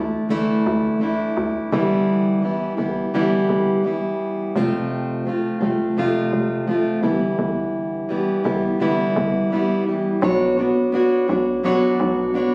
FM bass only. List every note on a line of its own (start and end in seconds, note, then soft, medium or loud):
0.00 0.62 D2 medium
0.67 1.33 D2 medium
1.37 1.69 D2 medium
1.73 2.75 G1 loud
2.78 3.45 G1 medium
3.49 4.52 G1 loud
4.56 5.58 F1 loud
5.62 6.29 F1 medium
6.33 7.00 F1 medium
7.04 7.36 G1 medium
7.39 8.41 G1 loud
8.45 9.12 G1 loud
9.16 10.19 G1 loud
10.22 11.25 B1 loud
11.29 11.96 B1 medium
12.00 12.55 B1 loud